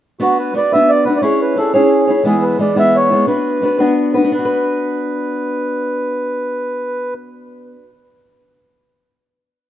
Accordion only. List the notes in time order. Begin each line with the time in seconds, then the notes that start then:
0.21 F#4
0.39 B4
0.56 D5
0.73 E5
0.89 D5
1.05 B4
1.16 D5
1.21 C#5
1.41 B4
1.58 A4
1.74 G#4
2.26 G#4
2.42 B4
2.60 D5
2.79 E5
2.96 C#5
3.28 B4
4.33 B4